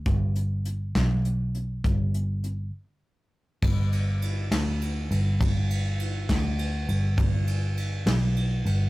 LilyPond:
<<
  \new Staff \with { instrumentName = "Picked electric bass" } { \clef bass \time 6/8 \key g \major \tempo 4. = 67 g,,4. b,,4. | g,,4. r4. | g,,4. d,4 g,,8 | g,,4. d,4 g,,8 |
g,,4. b,,4 g,,8 | }
  \new DrumStaff \with { instrumentName = "Drums" } \drummode { \time 6/8 <hh bd>8 hh8 hh8 <hh bd sn>8 hh8 hh8 | <hh bd>8 hh8 hh8 r4. | <cymc bd>8 cymr8 cymr8 <cymr sn>8 cymr8 cymr8 | <bd cymr>8 cymr8 cymr8 <bd cymr sn>8 cymr8 cymr8 |
<bd cymr>8 cymr8 cymr8 <cymr sn>8 cymr8 cymr8 | }
>>